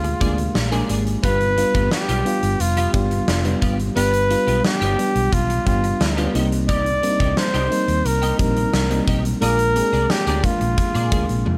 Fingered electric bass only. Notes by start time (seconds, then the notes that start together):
Already playing: D2
0.21 D2
0.55 A#1
0.89 G#1
1.24 G1
1.75 G1
2.09 B1
2.43 G1
2.60 F1
2.94 G1
3.28 F1
3.62 G#1
3.96 G1
4.47 B1
4.81 G1
5.15 B1
5.33 B1
5.67 G1
6.01 D2
6.35 C2
7.20 C2
7.54 C2
7.88 D#2
8.05 C2
8.39 A#1
8.73 C2
9.08 B1
9.42 A#1
9.93 C2
10.27 D2
10.61 A#1
10.95 A#2
11.12 D2
11.29 A#1
11.47 F2